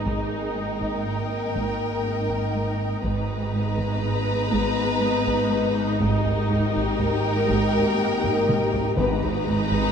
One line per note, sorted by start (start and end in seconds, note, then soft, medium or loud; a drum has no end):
0.00 3.00 G#1 soft
0.00 3.00 G#2 soft
0.00 3.00 D#4 medium
0.00 3.00 D#5 medium
0.00 2.99 A#5 medium
0.05 0.36 G#2 soft
0.05 3.00 A#3 medium
0.05 3.00 A#4 medium
0.05 3.01 A#4 medium
0.05 3.00 G5 medium
0.05 3.04 G5 medium
0.05 taiko medium
0.55 0.86 G#2 soft
0.82 taiko medium
1.06 1.36 G#2 soft
1.55 1.84 G#2 medium
1.55 taiko medium
2.05 2.34 G#3 soft
2.30 taiko medium
2.54 2.84 G#3 soft
3.02 8.93 G#1 medium
3.02 3.33 G#2 medium
3.02 8.93 G#2 medium
3.02 5.84 B3 medium
3.02 8.93 D#4 medium
3.02 6.00 G#4 medium
3.02 5.97 B4 medium
3.02 5.84 B4 medium
3.02 8.92 D#5 medium
3.02 8.92 A#5 medium
3.02 5.97 A#5 medium
3.02 taiko medium
3.53 3.83 G#2 medium
3.78 taiko medium
4.02 4.32 G#2 medium
4.52 4.82 G#2 medium
4.52 taiko medium
5.01 5.31 G#3 medium
5.27 taiko medium
5.50 5.80 G#3 medium
6.00 6.30 G#2 medium
6.00 8.93 A#3 medium
6.00 8.93 G4 medium
6.00 8.97 G4 medium
6.00 8.93 A#4 medium
6.00 8.93 G5 medium
6.00 taiko medium
6.26 taiko low soft
6.50 6.80 G#2 medium
6.50 taiko low medium
6.76 taiko medium
6.99 7.29 G#2 medium
6.99 taiko low medium
7.48 7.78 G#2 loud
7.48 taiko medium
7.74 taiko low medium
7.98 8.28 G#3 medium
8.24 taiko low-mid medium
8.48 8.77 G#3 medium
8.48 taiko mid loud
8.73 taiko low medium
8.95 9.92 G#1 medium
8.95 9.92 G#2 medium
8.95 9.27 G#2 medium
8.95 9.35 B3 medium
8.95 9.92 D#4 loud
8.95 9.92 G#4 medium
8.95 9.35 B4 medium
8.95 9.92 B4 medium
8.95 9.92 D#5 medium
8.95 9.92 A#5 medium
8.95 taiko loud
9.23 taiko low soft
9.46 9.76 G#2 medium
9.46 taiko low medium
9.72 taiko medium